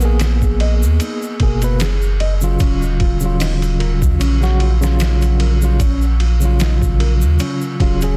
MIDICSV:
0, 0, Header, 1, 5, 480
1, 0, Start_track
1, 0, Key_signature, -6, "minor"
1, 0, Tempo, 800000
1, 1562, Time_signature, 4, 2, 24, 8
1, 4901, End_track
2, 0, Start_track
2, 0, Title_t, "Nylon-string guitar"
2, 0, Program_c, 0, 24
2, 0, Note_on_c, 0, 70, 66
2, 112, Note_off_c, 0, 70, 0
2, 126, Note_on_c, 0, 68, 81
2, 199, Note_off_c, 0, 68, 0
2, 363, Note_on_c, 0, 75, 67
2, 437, Note_off_c, 0, 75, 0
2, 604, Note_on_c, 0, 63, 77
2, 727, Note_off_c, 0, 63, 0
2, 844, Note_on_c, 0, 70, 69
2, 1072, Note_off_c, 0, 70, 0
2, 1084, Note_on_c, 0, 68, 77
2, 1158, Note_off_c, 0, 68, 0
2, 1322, Note_on_c, 0, 75, 71
2, 1397, Note_off_c, 0, 75, 0
2, 1561, Note_on_c, 0, 61, 78
2, 1686, Note_off_c, 0, 61, 0
2, 1804, Note_on_c, 0, 65, 67
2, 2032, Note_off_c, 0, 65, 0
2, 2038, Note_on_c, 0, 63, 75
2, 2115, Note_off_c, 0, 63, 0
2, 2278, Note_on_c, 0, 70, 67
2, 2355, Note_off_c, 0, 70, 0
2, 2517, Note_on_c, 0, 61, 76
2, 2644, Note_off_c, 0, 61, 0
2, 2757, Note_on_c, 0, 65, 76
2, 2989, Note_off_c, 0, 65, 0
2, 2998, Note_on_c, 0, 63, 75
2, 3075, Note_off_c, 0, 63, 0
2, 3235, Note_on_c, 0, 70, 71
2, 3313, Note_off_c, 0, 70, 0
2, 3479, Note_on_c, 0, 61, 86
2, 3605, Note_off_c, 0, 61, 0
2, 3718, Note_on_c, 0, 65, 66
2, 3949, Note_off_c, 0, 65, 0
2, 3961, Note_on_c, 0, 63, 79
2, 4036, Note_off_c, 0, 63, 0
2, 4199, Note_on_c, 0, 70, 74
2, 4275, Note_off_c, 0, 70, 0
2, 4436, Note_on_c, 0, 61, 80
2, 4564, Note_off_c, 0, 61, 0
2, 4679, Note_on_c, 0, 65, 76
2, 4901, Note_off_c, 0, 65, 0
2, 4901, End_track
3, 0, Start_track
3, 0, Title_t, "Tine electric piano"
3, 0, Program_c, 1, 4
3, 0, Note_on_c, 1, 59, 73
3, 15, Note_on_c, 1, 58, 73
3, 29, Note_on_c, 1, 68, 84
3, 809, Note_off_c, 1, 59, 0
3, 817, Note_off_c, 1, 58, 0
3, 824, Note_off_c, 1, 68, 0
3, 843, Note_on_c, 1, 47, 76
3, 848, Note_on_c, 1, 58, 68
3, 857, Note_on_c, 1, 68, 83
3, 954, Note_off_c, 1, 47, 0
3, 956, Note_off_c, 1, 58, 0
3, 961, Note_off_c, 1, 68, 0
3, 970, Note_on_c, 1, 47, 75
3, 978, Note_on_c, 1, 58, 68
3, 985, Note_on_c, 1, 71, 87
3, 1072, Note_off_c, 1, 47, 0
3, 1076, Note_off_c, 1, 58, 0
3, 1079, Note_off_c, 1, 71, 0
3, 1448, Note_on_c, 1, 49, 76
3, 1454, Note_on_c, 1, 54, 67
3, 1463, Note_on_c, 1, 65, 87
3, 1899, Note_off_c, 1, 49, 0
3, 1902, Note_off_c, 1, 54, 0
3, 1907, Note_off_c, 1, 65, 0
3, 1923, Note_on_c, 1, 49, 80
3, 1937, Note_on_c, 1, 54, 71
3, 1952, Note_on_c, 1, 65, 88
3, 2616, Note_off_c, 1, 49, 0
3, 2624, Note_off_c, 1, 54, 0
3, 2631, Note_off_c, 1, 65, 0
3, 2646, Note_on_c, 1, 49, 91
3, 2653, Note_on_c, 1, 54, 81
3, 2660, Note_on_c, 1, 66, 97
3, 2821, Note_off_c, 1, 49, 0
3, 2824, Note_off_c, 1, 54, 0
3, 2828, Note_off_c, 1, 66, 0
3, 2887, Note_on_c, 1, 49, 97
3, 2893, Note_on_c, 1, 54, 89
3, 2903, Note_on_c, 1, 65, 98
3, 3338, Note_off_c, 1, 49, 0
3, 3342, Note_off_c, 1, 54, 0
3, 3347, Note_off_c, 1, 65, 0
3, 3369, Note_on_c, 1, 49, 73
3, 3379, Note_on_c, 1, 54, 68
3, 3388, Note_on_c, 1, 65, 79
3, 3471, Note_off_c, 1, 49, 0
3, 3476, Note_off_c, 1, 54, 0
3, 3481, Note_off_c, 1, 65, 0
3, 3839, Note_on_c, 1, 49, 78
3, 3857, Note_on_c, 1, 54, 69
3, 3871, Note_on_c, 1, 65, 86
3, 4649, Note_off_c, 1, 49, 0
3, 4658, Note_off_c, 1, 54, 0
3, 4665, Note_off_c, 1, 65, 0
3, 4678, Note_on_c, 1, 49, 83
3, 4684, Note_on_c, 1, 54, 75
3, 4691, Note_on_c, 1, 65, 84
3, 4791, Note_off_c, 1, 49, 0
3, 4795, Note_off_c, 1, 54, 0
3, 4798, Note_off_c, 1, 65, 0
3, 4809, Note_on_c, 1, 49, 77
3, 4817, Note_on_c, 1, 54, 70
3, 4822, Note_on_c, 1, 68, 85
3, 4901, Note_off_c, 1, 49, 0
3, 4901, Note_off_c, 1, 54, 0
3, 4901, Note_off_c, 1, 68, 0
3, 4901, End_track
4, 0, Start_track
4, 0, Title_t, "Sub bass"
4, 0, Program_c, 2, 38
4, 0, Note_on_c, 2, 34, 94
4, 500, Note_on_c, 2, 39, 85
4, 509, Note_off_c, 2, 34, 0
4, 592, Note_off_c, 2, 39, 0
4, 841, Note_on_c, 2, 30, 73
4, 1541, Note_off_c, 2, 30, 0
4, 1561, Note_on_c, 2, 27, 95
4, 2414, Note_on_c, 2, 39, 81
4, 2422, Note_off_c, 2, 27, 0
4, 2509, Note_off_c, 2, 39, 0
4, 2521, Note_on_c, 2, 34, 94
4, 4334, Note_on_c, 2, 39, 90
4, 4343, Note_off_c, 2, 34, 0
4, 4429, Note_off_c, 2, 39, 0
4, 4680, Note_on_c, 2, 27, 102
4, 4901, Note_off_c, 2, 27, 0
4, 4901, End_track
5, 0, Start_track
5, 0, Title_t, "Drums"
5, 4, Note_on_c, 9, 82, 68
5, 64, Note_off_c, 9, 82, 0
5, 117, Note_on_c, 9, 51, 83
5, 120, Note_on_c, 9, 82, 64
5, 125, Note_on_c, 9, 38, 110
5, 177, Note_off_c, 9, 51, 0
5, 180, Note_off_c, 9, 82, 0
5, 185, Note_off_c, 9, 38, 0
5, 251, Note_on_c, 9, 36, 89
5, 252, Note_on_c, 9, 82, 40
5, 311, Note_off_c, 9, 36, 0
5, 312, Note_off_c, 9, 82, 0
5, 360, Note_on_c, 9, 51, 61
5, 420, Note_off_c, 9, 51, 0
5, 497, Note_on_c, 9, 82, 79
5, 557, Note_off_c, 9, 82, 0
5, 599, Note_on_c, 9, 51, 82
5, 602, Note_on_c, 9, 82, 65
5, 659, Note_off_c, 9, 51, 0
5, 662, Note_off_c, 9, 82, 0
5, 734, Note_on_c, 9, 82, 36
5, 794, Note_off_c, 9, 82, 0
5, 838, Note_on_c, 9, 51, 63
5, 840, Note_on_c, 9, 36, 89
5, 898, Note_off_c, 9, 51, 0
5, 900, Note_off_c, 9, 36, 0
5, 971, Note_on_c, 9, 51, 41
5, 973, Note_on_c, 9, 82, 79
5, 1031, Note_off_c, 9, 51, 0
5, 1033, Note_off_c, 9, 82, 0
5, 1079, Note_on_c, 9, 51, 88
5, 1080, Note_on_c, 9, 82, 54
5, 1088, Note_on_c, 9, 38, 106
5, 1139, Note_off_c, 9, 51, 0
5, 1140, Note_off_c, 9, 82, 0
5, 1148, Note_off_c, 9, 38, 0
5, 1212, Note_on_c, 9, 82, 34
5, 1272, Note_off_c, 9, 82, 0
5, 1321, Note_on_c, 9, 51, 67
5, 1381, Note_off_c, 9, 51, 0
5, 1448, Note_on_c, 9, 82, 82
5, 1508, Note_off_c, 9, 82, 0
5, 1555, Note_on_c, 9, 82, 59
5, 1560, Note_on_c, 9, 36, 108
5, 1561, Note_on_c, 9, 51, 82
5, 1615, Note_off_c, 9, 82, 0
5, 1620, Note_off_c, 9, 36, 0
5, 1621, Note_off_c, 9, 51, 0
5, 1694, Note_on_c, 9, 82, 37
5, 1754, Note_off_c, 9, 82, 0
5, 1800, Note_on_c, 9, 36, 85
5, 1800, Note_on_c, 9, 51, 64
5, 1860, Note_off_c, 9, 36, 0
5, 1860, Note_off_c, 9, 51, 0
5, 1923, Note_on_c, 9, 82, 70
5, 1983, Note_off_c, 9, 82, 0
5, 2041, Note_on_c, 9, 46, 79
5, 2043, Note_on_c, 9, 82, 62
5, 2049, Note_on_c, 9, 38, 110
5, 2101, Note_off_c, 9, 46, 0
5, 2103, Note_off_c, 9, 82, 0
5, 2109, Note_off_c, 9, 38, 0
5, 2173, Note_on_c, 9, 51, 40
5, 2177, Note_on_c, 9, 82, 37
5, 2233, Note_off_c, 9, 51, 0
5, 2237, Note_off_c, 9, 82, 0
5, 2282, Note_on_c, 9, 51, 60
5, 2342, Note_off_c, 9, 51, 0
5, 2412, Note_on_c, 9, 36, 88
5, 2414, Note_on_c, 9, 82, 72
5, 2472, Note_off_c, 9, 36, 0
5, 2474, Note_off_c, 9, 82, 0
5, 2524, Note_on_c, 9, 82, 59
5, 2525, Note_on_c, 9, 51, 86
5, 2584, Note_off_c, 9, 82, 0
5, 2585, Note_off_c, 9, 51, 0
5, 2655, Note_on_c, 9, 82, 37
5, 2663, Note_on_c, 9, 38, 37
5, 2715, Note_off_c, 9, 82, 0
5, 2723, Note_off_c, 9, 38, 0
5, 2760, Note_on_c, 9, 51, 64
5, 2820, Note_off_c, 9, 51, 0
5, 2894, Note_on_c, 9, 82, 75
5, 2901, Note_on_c, 9, 38, 51
5, 2954, Note_off_c, 9, 82, 0
5, 2961, Note_off_c, 9, 38, 0
5, 2997, Note_on_c, 9, 82, 67
5, 3000, Note_on_c, 9, 51, 87
5, 3008, Note_on_c, 9, 38, 110
5, 3057, Note_off_c, 9, 82, 0
5, 3060, Note_off_c, 9, 51, 0
5, 3068, Note_off_c, 9, 38, 0
5, 3130, Note_on_c, 9, 82, 40
5, 3134, Note_on_c, 9, 51, 39
5, 3190, Note_off_c, 9, 82, 0
5, 3194, Note_off_c, 9, 51, 0
5, 3239, Note_on_c, 9, 51, 71
5, 3299, Note_off_c, 9, 51, 0
5, 3371, Note_on_c, 9, 82, 68
5, 3431, Note_off_c, 9, 82, 0
5, 3478, Note_on_c, 9, 36, 108
5, 3479, Note_on_c, 9, 51, 88
5, 3480, Note_on_c, 9, 82, 62
5, 3538, Note_off_c, 9, 36, 0
5, 3539, Note_off_c, 9, 51, 0
5, 3540, Note_off_c, 9, 82, 0
5, 3610, Note_on_c, 9, 82, 35
5, 3670, Note_off_c, 9, 82, 0
5, 3720, Note_on_c, 9, 51, 59
5, 3780, Note_off_c, 9, 51, 0
5, 3847, Note_on_c, 9, 82, 80
5, 3907, Note_off_c, 9, 82, 0
5, 3958, Note_on_c, 9, 82, 67
5, 3960, Note_on_c, 9, 51, 85
5, 3968, Note_on_c, 9, 38, 108
5, 4018, Note_off_c, 9, 82, 0
5, 4020, Note_off_c, 9, 51, 0
5, 4028, Note_off_c, 9, 38, 0
5, 4089, Note_on_c, 9, 36, 88
5, 4095, Note_on_c, 9, 82, 39
5, 4149, Note_off_c, 9, 36, 0
5, 4155, Note_off_c, 9, 82, 0
5, 4201, Note_on_c, 9, 51, 60
5, 4261, Note_off_c, 9, 51, 0
5, 4329, Note_on_c, 9, 82, 77
5, 4389, Note_off_c, 9, 82, 0
5, 4433, Note_on_c, 9, 82, 54
5, 4440, Note_on_c, 9, 51, 86
5, 4493, Note_off_c, 9, 82, 0
5, 4500, Note_off_c, 9, 51, 0
5, 4569, Note_on_c, 9, 82, 37
5, 4629, Note_off_c, 9, 82, 0
5, 4679, Note_on_c, 9, 36, 90
5, 4681, Note_on_c, 9, 51, 66
5, 4739, Note_off_c, 9, 36, 0
5, 4741, Note_off_c, 9, 51, 0
5, 4809, Note_on_c, 9, 82, 80
5, 4813, Note_on_c, 9, 51, 40
5, 4869, Note_off_c, 9, 82, 0
5, 4873, Note_off_c, 9, 51, 0
5, 4901, End_track
0, 0, End_of_file